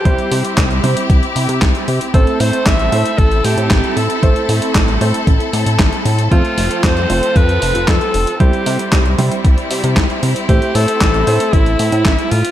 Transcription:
<<
  \new Staff \with { instrumentName = "Alto saxophone" } { \time 4/4 \key a \minor \tempo 4 = 115 g'4 r2. | a'8 c''8 e''4 a'8 g'4 a'8~ | a'4 r2. | f'4 c''4 b'4 a'4 |
g'4. r2 r8 | g'8 a'4. e'4. f'8 | }
  \new Staff \with { instrumentName = "Grand piano" } { \time 4/4 \key a \minor <g c' e' c''>4. <g c' e' c''>8 r2 | <a c' e' c''>4. <a c' e' c''>8 r2 | <a c' e' c''>4. <a c' e' c''>8 r2 | <a c' f' c''>4. <a c' f' c''>8 r2 |
<g c' e' c''>4. <g c' e' c''>8 r2 | <a c' e' c''>4. <a c' e' c''>8 r2 | }
  \new Staff \with { instrumentName = "String section" } { \time 4/4 \key a \minor << { <e' g'>1 | <e' a'>1~ | <e' a'>1 | <f c'>1 |
<c' e'>1~ | <c' e'>1 | } \\ { c'1~ | c'1~ | c'1 | f'1 |
g1 | a1 | } >> }
  \new Staff \with { instrumentName = "Analog synth bass" } { \clef bass \time 4/4 \key a \minor c,16 r16 c16 r16 c,8 c16 r16 c,16 r16 c16 c16 c,16 r16 c16 r16 | a,,16 r16 a,16 r16 a,,8 a,16 r16 a,,8 a,16 a,16 a,,16 r16 a,16 r16 | a,,16 r16 a,16 r16 a,,8 a,16 r16 a,,16 r16 a,16 a,16 a,,16 r16 a,8 | f,16 r16 f,,16 r16 f,8 f,,16 r16 f,8 f,,16 f,,16 f,16 r16 f,,16 r16 |
c,16 r16 c16 r16 c,8 c16 r16 c,16 r16 c16 c16 c,16 r16 c16 r16 | a,,16 r16 a,16 r16 a,,8 a,16 r16 a,,8 a,16 a,16 a,,16 r16 a,16 r16 | }
  \new DrumStaff \with { instrumentName = "Drums" } \drummode { \time 4/4 <hh bd>16 hh16 hho16 hh16 <hc hh bd sn>16 hh16 hho16 hh16 <hh bd>16 hh16 hho16 hh16 <hc hh bd sn>16 hh16 hho16 hh16 | <hh bd>16 hh16 hho16 hh16 <hc hh bd sn>16 hh16 hho16 hh16 <hh bd>16 hh16 hho16 hh16 <hc hh bd sn>16 hh16 hho16 hh16 | <hh bd>16 hh16 hho16 hh16 <hc hh bd sn>16 hh16 hho16 hh16 <hh bd>16 hh16 hho16 hh16 <hc hh bd sn>16 hh16 hho16 hh16 | <hh bd>16 hh16 hho16 hh16 <hc hh bd sn>16 hh16 hho16 hh16 <hh bd>16 hh16 hho16 hh16 <hc hh bd sn>16 hh16 hho16 hh16 |
<hh bd>16 hh16 hho16 hh16 <hc hh bd sn>16 hh16 hho16 hh16 <hh bd>16 hh16 hho16 hh16 <hc hh bd sn>16 hh16 hho16 hh16 | <hh bd>16 hh16 hho16 hh16 <hc hh bd sn>16 hh16 hho16 hh16 <hh bd>16 hh16 hho16 hh16 <hc hh bd sn>16 hh16 hho16 hh16 | }
>>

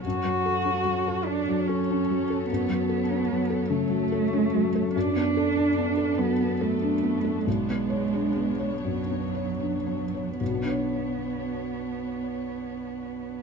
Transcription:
<<
  \new Staff \with { instrumentName = "String section" } { \time 6/8 \key b \minor \tempo 4. = 47 << { a'2.~ | a'2. | a'2. | cis''2. |
cis''2. | } \\ { <fis cis''>2.~ | <fis cis''>2. | <b d'>2.~ | <b d'>2. |
<b d'>2. | } >> }
  \new Staff \with { instrumentName = "Felt piano" } { \time 6/8 \key b \minor fis,16 fis16 a'16 cis'16 fis16 a'8 fis16 a'16 cis'16 fis16 a'16 | fis,16 fis16 a'16 cis'16 fis16 a'16 cis16 fis16 a'16 cis'16 fis16 a'16 | fis,16 b16 a'16 d'16 b16 a'16 fis16 b16 a'16 d'16 b16 a'16 | b,,16 b16 cis''16 d'16 b16 cis''16 fis,16 b16 cis''16 d'16 b16 cis''16 |
<b,, b, b d' cis''>2. | }
  \new Staff \with { instrumentName = "Cello" } { \time 6/8 \key b \minor fis'4. d'8 cis'4 | b4. a4. | d'4. b8 a4 | gis4. fis4. |
b2. | }
>>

